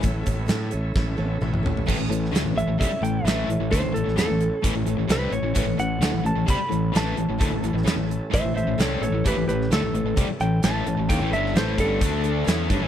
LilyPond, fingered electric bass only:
\new Staff \with { instrumentName = "Fingered electric bass" } { \clef bass \time 4/4 \key a \major \tempo 4 = 130 a,,8 a,,8 a,8 a,,8 a,,8 a,,8 a,,4 | a,,16 a,,16 a,,8 d,16 a,,16 a,,16 a,,16 c,16 r16 a,,8 a,,8 a,,16 a,,16 | d,16 a,,16 a,,16 a,,16 e,16 a,,8 r16 a,,16 a,,16 a,,16 a,,16 c,8 a,,16 a,,16 | a,,16 a,,16 a,,8 d,16 a,,16 a,,16 a,,16 c,16 r16 a,,8 a,,8 a,,16 a,,16 |
d,16 a,,16 a,,16 a,,16 e,16 a,,8 r16 a,,16 a,,16 a,,16 a,,16 c,8 a,,16 a,,16 | a,,16 a,,16 a,,8 d,16 a,,16 a,,16 a,,16 c,16 r16 a,,8 a,,8 a,,16 a,,16 | dis,16 a,,16 g,,8 a,,8 g,,8 d,4 e,8 g,16 a,,16 | }